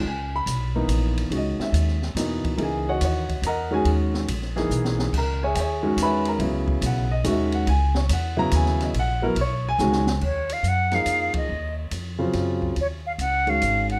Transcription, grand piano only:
0.08 G#5
0.36 B5
0.75 E3 A#3 B3 D#4
1.31 D#3 G#3 C#4 F#4
1.37 D#5
1.62 E5
2.16 B2 E3 A#3 D#4
2.57 E3 A#3 D#4 G#4
2.63 G#4 G#5
2.88 F#4 C#5 D#5 F#5
3.04 F#4 C#5 D#5 F#5
3.46 A#4 D#5 F#5 A#5
3.71 D#3 G#3 C#4 F#4 G#4 G#5
4.56 E3 A#3 D#4 G#4
5.18 A#4 A#5
5.43 G#4 C#5 E5 G#5
5.55 G5
5.60 G#4 C#5 E5 G#5
5.83 D#3 G#3 C#4 F#4
6.03 B4 E5 G#5 B5
6.28 A#4 A#5
6.39 C#3 F#3 B3 E4
6.86 F#5
7.11 D#5
7.24 D#3 G#3 C#4 F#4 E5
7.54 F#5
7.69 G#5
7.97 C#5
8.13 F#5
8.37 C#3 F#3 B3 E4 A#5
8.55 G#5
8.83 D#5
8.99 F#5
9.22 F#3 B3 E4 A#4
9.41 C#5
9.69 G#5
9.80 D#3 G#3 C#4 F#4
10.92 F3 A#3 D#4 G#4
12.19 C#3 F#3 C4 F4
13.47 D#3 G#3 C#4 F#4

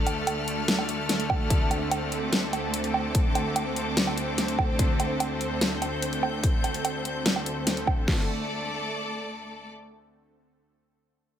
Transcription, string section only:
Already playing: A3 A4 D5 F6
2.21 D6
2.73 C5
5.49 G6
8.08 A3
8.14 A4
8.20 D5
8.26 D6

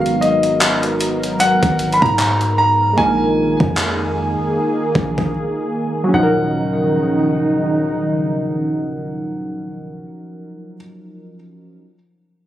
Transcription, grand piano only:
Already playing: F5
0.21 D#5
1.40 F#5
1.94 B5
2.02 A#5
2.58 A#5
2.98 G#5
6.14 F#5

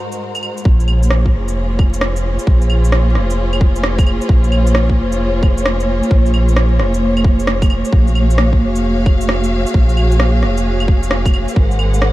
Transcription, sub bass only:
0.65 A#1
1.34 F1
2.47 A#1
3.16 F1
4.29 A#1
4.98 F1
6.11 A#1
6.79 F1
7.93 A#1
8.61 F1
9.74 A#1
10.43 F1
11.56 G#1

